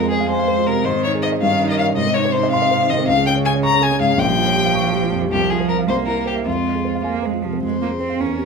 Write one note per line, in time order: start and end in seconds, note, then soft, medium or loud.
0.00 0.82 F2 medium
0.00 0.29 G#3 medium
0.00 0.75 C4 soft
0.00 0.57 F4 medium
0.00 0.16 G#4 medium
0.10 0.28 G#4 medium
0.10 0.26 C5 medium
0.20 0.35 F5 medium
0.29 0.86 G#3 medium
0.29 0.68 C5 medium
0.29 0.44 G#5 medium
0.39 0.54 F5 medium
0.48 0.63 C5 medium
0.57 0.72 F4 medium
0.66 0.82 C3 soft
0.66 0.86 A#4 medium
0.75 0.85 C4 soft
0.84 1.40 G#2 medium
0.84 1.40 D#3 medium
0.84 1.03 C5 medium
0.96 1.10 C4 soft
1.04 1.19 D#4 medium
1.04 1.11 C#5 medium
1.14 1.29 G#4 medium
1.22 1.38 C5 medium
1.22 1.30 D#5 medium
1.32 1.42 D#5 medium
1.40 1.96 G2 medium
1.40 1.96 D#3 medium
1.40 1.69 F5 medium
1.52 1.66 C#4 medium
1.61 1.76 D#4 medium
1.69 1.85 A#4 medium
1.69 1.78 D#5 medium
1.79 1.94 C#5 medium
1.79 1.86 F5 loud
1.89 1.98 D#5 medium
1.96 3.05 G#2 medium
1.96 3.10 C3 medium
1.96 2.16 D#5 loud
2.06 2.21 C4 soft
2.14 2.30 D#4 medium
2.14 2.33 C#5 medium
2.25 2.40 C5 medium
2.32 2.49 D#4 medium
2.32 2.51 C5 medium
2.43 2.58 D#5 medium
2.51 2.91 F5 medium
2.51 2.68 C6 medium
2.62 2.77 D#5 medium
2.71 2.86 C5 medium
2.81 2.96 D#4 soft
2.90 3.05 D#3 medium
2.90 3.07 D#5 medium
2.99 3.08 C4 medium
3.08 4.16 C#2 medium
3.08 4.20 C#3 medium
3.08 3.26 F5 loud
3.17 3.32 G#3 soft
3.27 3.42 C#4 medium
3.27 3.34 G5 medium
3.36 3.51 C#5 medium
3.45 3.60 G#4 medium
3.45 3.53 G#5 medium
3.54 3.70 C#5 medium
3.63 3.84 A#5 medium
3.63 3.79 C#6 medium
3.73 3.88 C#5 medium
3.81 3.97 G#4 medium
3.81 4.01 G#5 loud
3.91 4.07 C#4 soft
4.00 4.15 G#2 medium
4.00 4.21 F5 medium
4.09 4.19 G#3 soft
4.17 5.27 A#1 medium
4.17 5.29 F3 medium
4.17 5.12 G5 loud
4.27 4.43 G3 soft
4.37 4.53 F4 medium
4.46 4.62 C#5 medium
4.56 4.71 G4 medium
4.66 4.81 F5 medium
4.75 4.90 C#6 medium
4.84 4.99 F5 medium
4.93 5.09 G4 medium
5.03 5.18 F4 soft
5.12 5.28 F2 soft
5.22 5.31 G3 soft
5.32 5.86 C2 medium
5.32 5.91 F3 medium
5.32 5.52 G4 medium
5.41 5.56 C4 soft
5.50 5.66 F4 medium
5.50 5.68 G#4 medium
5.60 5.75 C5 medium
5.68 5.85 F4 soft
5.68 5.76 A#4 medium
5.79 5.88 F5 soft
5.87 6.44 C2 medium
5.87 6.48 A#3 medium
5.87 5.96 C5 medium
5.98 6.13 C4 soft
6.07 6.23 E4 soft
6.07 6.26 A#4 medium
6.17 6.32 A#4 soft
6.26 6.35 G4 medium
6.26 6.42 C5 soft
6.36 6.46 E5 soft
6.46 7.60 F2 medium
6.46 7.01 G#3 medium
6.46 7.04 F4 medium
6.55 6.71 C4 soft
6.66 6.82 F4 soft
6.75 6.91 G#4 soft
6.85 7.01 C5 soft
6.95 7.11 F5 soft
7.04 7.27 A#3 medium
7.04 7.20 G#5 soft
7.14 7.30 F5 soft
7.23 7.45 G#3 medium
7.23 7.39 C5 soft
7.32 7.49 F4 soft
7.43 7.59 C3 soft
7.43 7.63 F3 soft
7.53 7.63 C4 soft
7.62 8.18 F2 soft
7.62 7.81 G#3 medium
7.62 8.22 C5 soft
7.72 7.88 C4 soft
7.81 7.90 A#3 medium
7.81 7.97 F4 soft
7.91 8.07 G#4 soft
8.00 8.22 C4 medium
8.00 8.16 C5 soft
8.10 8.20 F5 soft
8.20 8.45 E2 soft
8.20 8.45 C#4 medium
8.20 8.45 A#4 soft
8.29 8.45 C4 soft
8.38 8.45 G4 soft